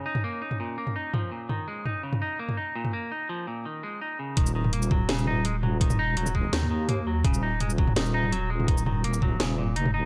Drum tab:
HH |----------------|----------------|----------------|x---x---x---x---|
SH |----------------|----------------|----------------|-x---x---x------|
SD |----------------|----------------|----------------|--------o-------|
T2 |-o---o---o--o---|o---o--o---o---o|----------------|---o--o---o---o-|
BD |----------------|----------------|----------------|o-----o---------|

HH |x---x---x---x---|x---x---x---x---|x---x---x---x---|
SH |-x---x----------|-x---x---x------|-x---x----------|
SD |--------o-------|--------o-------|--------o-------|
T2 |-o---o---o--o---|o---o--o---o---o|--o---o---o--o--|
BD |o-----o---------|o-----o---------|o-----o---------|